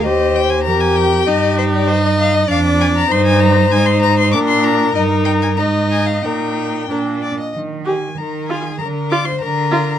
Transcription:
X:1
M:2/4
L:1/16
Q:1/4=98
K:Eb
V:1 name="Violin"
e2 g a b a g2 | e2 c d c e f e | f2 a b c' a b2 | a c' b c' d' c' b2 |
e2 g a b2 a f | g6 z2 | z2 a2 b2 a2 | b2 d' c' b4 |]
V:2 name="Violin"
c4 B4 | G4 e4 | d4 c4- | c4 B4- |
B4 e4 | B4 B2 d e | z2 A2 B2 A2 | B2 d c B4 |]
V:3 name="Viola"
G4 G4 | E8 | D4 E4 | E4 D4 |
E4 E4 | E4 D2 z2 | z2 G z3 F z | z2 F z3 F z |]
V:4 name="Cello" clef=bass
E,,4 F,,4 | G,,8 | F,,4 G,,4 | A,,4 B,,4 |
G,,4 A,,4 | B,,4 B,,2 z2 | E,4 E,4 | D,4 D,4 |]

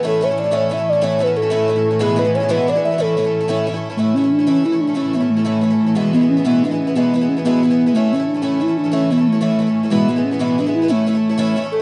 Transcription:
X:1
M:6/8
L:1/16
Q:3/8=122
K:A
V:1 name="Soft synth lead"
A2 c2 d2 c2 e2 d2 | c2 B2 A2 A6 | G2 B2 c2 B2 d2 e2 | A8 z4 |
A,2 C2 D2 C2 E2 D2 | C2 B,2 A,2 A,6 | G,2 B,2 C3/2 C/2 B,2 D2 C2 | B,2 B,2 C2 B,6 |
A,2 C2 D2 C2 E2 D2 | C2 B,2 A,2 A,6 | G,2 B,2 C2 B,2 D2 E2 | A,8 z2 A2 |]
V:2 name="Bouzouki"
A,2 C2 D3/2 D/2 C2 E4 | C2 B,2 A,2 A,6 | G,2 B,2 C2 B,2 D2 E2 | A,8 z4 |
z12 | z12 | z12 | z12 |
z12 | z12 | z12 | z8 z2 A,2 |]
V:3 name="Twelve-string acoustic guitar"
[A,,E,A,CE]2 [E,A,CE] [A,CE]2 [A,CE] [A,,E,A,CE]2 [E,A,CE] [A,CE]2 [A,CE] | [A,,E,A,CE]2 [E,A,CE] [A,CE]2 [A,CE] [A,,E,A,CE]2 [E,A,CE] [A,CE]2 [A,CE] | [E,,B,,E,G,B,E]2 [E,G,B,E] [E,G,B,E]2 [E,G,B,E] [E,,B,,E,G,B,E]2 [E,G,B,E] [E,G,B,E]2 [E,G,B,E] | [A,,E,A,CE]2 [E,A,CE] [A,CE]2 [A,CE] [A,,E,A,CE]2 [E,A,CE] [A,CE]2 [A,CE] |
[A,,E,A,CE]2 [E,A,CE] [A,CE]2 [A,CE] [A,,E,A,CE]2 [E,A,CE] [A,CE]2 [A,CE] | [A,,E,A,CE]2 [E,A,CE] [A,CE]2 [A,CE] [A,,E,A,CE]2 [E,A,CE] [A,CE]2 [A,CE] | [E,,B,,E,G,B,E]2 [E,G,B,E] [E,G,B,E]2 [E,G,B,E] [E,,B,,E,G,B,E]2 [E,G,B,E] [E,G,B,E]2 [E,G,B,E] | [E,,B,,E,G,B,E]2 [E,G,B,E] [E,G,B,E]2 [E,G,B,E] [E,,B,,E,G,B,E]2 [E,G,B,E] [E,G,B,E]2 [E,G,B,E] |
[A,,E,A,CE]2 [E,A,CE] [A,CE]2 [A,CE] [A,,E,A,CE]2 [E,A,CE] [A,CE]2 [A,CE] | [A,,E,A,CE]2 [E,A,CE] [A,CE]2 [A,CE] [A,,E,A,CE]2 [E,A,CE] [A,CE]2 [A,CE] | [E,,B,,E,G,B,E]2 [E,G,B,E] [E,G,B,E]2 [E,G,B,E] [E,,B,,E,G,B,E]2 [E,G,B,E] [E,G,B,E]2 [E,G,B,E] | [A,,E,A,CE]2 [E,A,CE] [A,CE]2 [A,CE] [A,,E,A,CE]2 [E,A,CE] [A,CE]2 z |]
V:4 name="String section" clef=bass
[A,,E,]12- | [A,,E,]12- | [A,,E,]12- | [A,,E,]12 |
[A,,E,]12- | [A,,E,]12- | [A,,E,]12- | [A,,E,]12 |
[A,,E,]12- | [A,,E,]12- | [A,,E,]12- | [A,,E,]12 |]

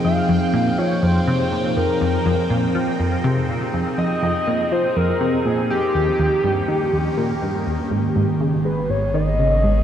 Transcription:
X:1
M:4/4
L:1/8
Q:1/4=122
K:Fm
V:1 name="Synth texture"
g8- | g8- | g8- | g8 |
[K:G#m] z8 |]
V:2 name="Analog synth lead"
f3 d c3 B- | B3 z4 z | e3 c B2 A G- | G6- G z |
[K:G#m] z3 B c d3 |]
V:3 name="Ambient pad"
[F,CEA]8- | [F,CEA]8- | [F,CEA]8 | [E,B,DG]8 |
[K:G#m] [D,G,B,G]8 |]
V:4 name="Synth arpeggio sound" clef=bass
F,, F,, B,, F, F,, C, B,, F,, | F,, F,, B,, F, F,, C, B,, F,, | F,, F,, B,, F, F,, C, B,, F,, | E,, E,, G,, E, E,, B,, G,, E,, |
[K:G#m] G,, G,, C, G, G,, D, C, G,, |]
V:5 name="Analog synth bass" clef=bass
z8 | z8 | z8 | z8 |
[K:G#m] G,,,8 |]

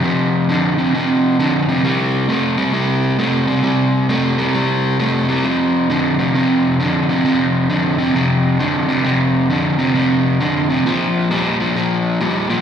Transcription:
X:1
M:4/4
L:1/8
Q:"Swing" 1/4=133
K:F
V:1 name="Overdriven electric guitar" clef=bass
[F,,C,]2 [F,,D,] [F,,C,] [F,,C,]2 [F,,D,] [F,,C,] | [C,G,]2 [C,A,] [C,G,] [C,G,]2 [C,A,] [C,G,] | [C,G,]2 [C,A,] [C,G,] [C,G,]2 [C,A,] [C,G,] | [F,,C,]2 [F,,D,] [F,,C,] [F,,C,]2 [F,,D,] [F,,C,] |
[F,,C,]2 [F,,D,] [F,,C,] [F,,C,]2 [F,,D,] [F,,C,] | [F,,C,]2 [F,,D,] [F,,C,] [F,,C,]2 [F,,D,] [F,,C,] | [B,,F,]2 [B,,G,] [B,,F,] [B,,F,]2 [B,,G,] [B,,F,] |]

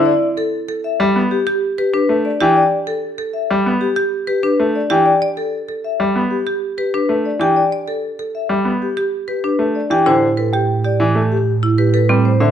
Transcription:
X:1
M:4/4
L:1/16
Q:1/4=96
K:Gmix
V:1 name="Celesta"
z16 | z16 | z16 | z16 |
z3 g z12 |]
V:2 name="Vibraphone"
d z A z2 e z2 G z2 G B z d g | d z A z2 e z2 G z2 G B z d g | d z A z2 e z2 G z2 G B z d g | d z A z2 e z2 G z2 G B z d g |
c z A z2 d z2 G z2 G B z c e |]
V:3 name="Marimba"
z2 A z A z4 G z B D z2 G | z2 A z A z4 G z B D z2 G | z d A z A z4 G z B D z2 G | z d A z A z4 G z B D z2 G |
E z B G z G z4 E B A C z2 |]
V:4 name="Grand piano" clef=bass
z6 G, B, z4 z A, z E, | z6 G, B, z4 z A, z E, | z6 G, B, z4 z A, z E, | z6 G, B, z4 z A, z E, |
D, z4 z E, A, z4 z G, z D, |]
V:5 name="Double bass" clef=bass
z16 | z16 | z16 | z16 |
A,,16 |]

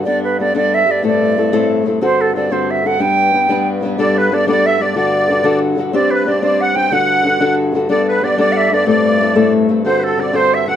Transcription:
X:1
M:6/8
L:1/16
Q:3/8=123
K:G
V:1 name="Accordion"
z12 | z12 | z12 | z12 |
d2 B2 d2 d2 e2 d2 | d8 z4 | d2 B2 d2 d2 f2 g2 | f8 z4 |
d2 B2 d2 d4 d2 | d6 d2 z4 | c2 A2 d2 c2 e2 f2 |]
V:2 name="Flute"
d2 B2 d2 d2 e2 d2 | d8 z4 | c2 A2 d2 c2 e2 f2 | g8 z4 |
d2 B2 d2 d2 e3/2 e/2 d2 | d8 z4 | d2 B2 d2 d2 f2 g2 | f8 z4 |
d2 B2 d2 d3/2 f/2 e2 d2 | d8 z4 | c3/2 B/2 A2 d2 c2 e2 f2 |]
V:3 name="Steel-string acoustic guitar"
[G,B,DA]4 [G,B,DA]2 [G,B,DA]4 [G,B,DA]2 | [A,,A,CEA]4 [A,CEA]2 [A,,A,CEA]4 [A,CEA]2 | [D,CFA]4 [D,CFA]2 [D,CFA]4 [D,CFA]2 | [G,B,DB]4 [G,B,DB]2 [G,B,DB]4 [G,B,DB]2 |
[G,B,DA]4 [G,B,DA]2 [G,B,DA]4 [G,B,DA]2 | [D,DFA]4 [D,DFA]2 [D,DFA]4 [D,DFA]2 | [CDGc]4 [CDGc]2 [CDGc]4 [CDGc]2 | [D,DFA]4 [D,DFA]2 [D,DFA]4 [D,DFA]2 |
[G,B,DA]4 [G,B,DA]2 [G,B,DA]4 [G,B,DA]2 | [A,,A,CEA]4 [A,CEA]2 [A,,A,CEA]4 [A,CEA]2 | [D,CFA]4 [D,CFA]2 [D,CFA]4 [D,CFA]2 |]
V:4 name="Harmonium" clef=bass
G,,12- | G,,12- | G,,12- | G,,12 |
G,,12- | G,,12- | G,,12- | G,,12 |
G,,12- | G,,12- | G,,12 |]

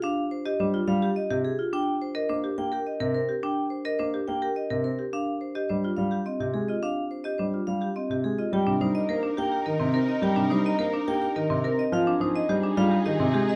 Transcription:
X:1
M:3/4
L:1/16
Q:1/4=106
K:Cm
V:1 name="Vibraphone"
f z c e c z f G e z A z | g z c e c z g G e z B z | g z c e c z g G e z B z | f z c e c z f G e z A e |
f z c e c z f G e z A e | g z c e c z g G e z B e | g z c e c z g G e z B e | f z c e c z f G e z A e |]
V:2 name="Marimba"
D z2 G D F z G z G z F | D z2 B D G z B z B z G | D z2 B D G z B z B z G | D z2 G D F z G C G z F |
D z2 G D F z G C G z F | G D E z B D G z B C B z | G D E z B D G z B C B z | F D E z G D F z G C G z |]
V:3 name="String section"
z12 | z12 | z12 | z12 |
z12 | [EB]12- | [EB]8- [EB]3 z | [EA]12 |]
V:4 name="Grand piano" clef=bass
z4 G, z G, z2 C, z2 | z4 B, z B, z2 C, C z | z4 B, z B, z2 C, C z | z4 G, z G, z2 C, A, z |
z4 G, z G, z2 C, A, z | G, C, G, z B, z B, z E, C, C z | G, C, G, z B, z B, z E, C, C z | F, z F, z G, z G, z E, C, A, z |]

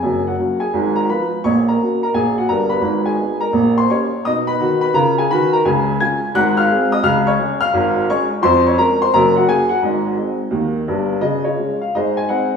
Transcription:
X:1
M:4/4
L:1/8
Q:"Swing" 1/4=172
K:G#dor
V:1 name="Grand piano"
[_A_a] [Ff]2 [Gg]2 [^A^a] [_c_c']2 | [cc'] [Aa]2 [Aa] [Gg] [Ff] [Aa] [Bb]- | [Bb] [Gg]2 [Aa]2 [^B^b] [_d_d']2 | [dd'] [Bb]2 [Bb] [Aa] [Gg] [Bb] [Aa] |
[K:Db] [Aa]2 [aa']2 [gg'] [ff']2 [ee'] | [ff'] [dd']2 [ff']3 [dd'] z | [cc'] [dd'] [Bb] [cc'] [Bb] [Gg] [Aa] [Gg] | [Ee]6 z2 |
[Ae] [FAd]2 f [Ace] a [ceg]2 |]
V:2 name="Grand piano" clef=bass
[F,,,F,,]2 [F,A,C]2 [_A,,,_A,,]2 [=F,_C=F]2 | [A,,,A,,]2 [A,CF]2 [A,,,A,,]2 [=G,,,=G,,]2 | [G,,,G,,]2 [B,DG]2 [_B,,,_B,,]2 [_B,_D=G]2 | [B,,D]2 [D,F]2 [C,E]2 [D,F]2 |
[K:Db] [D,,D,]2 [A,DF]2 [A,,,A,,]2 [A,CA]2 | [D,,D,]2 [A,DA]2 [A,,,A,,]2 [A,DA]2 | [F,,F,]2 [A,DA]2 [G,,,G,,]2 [B,DG]2 | [A,,,A,,]2 [A,CE]2 [E,,E,]2 [=G,,,=G,,]2 |
D,2 [A,DF]2 A,,2 [A,CE]2 |]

